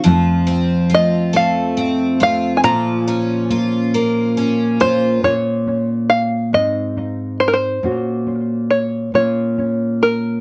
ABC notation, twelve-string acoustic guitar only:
X:1
M:6/8
L:1/8
Q:3/8=46
K:Bbm
V:1 name="Twelve-string acoustic guitar"
F, C F =A, C F | F, D F B, D F | z6 | z6 |]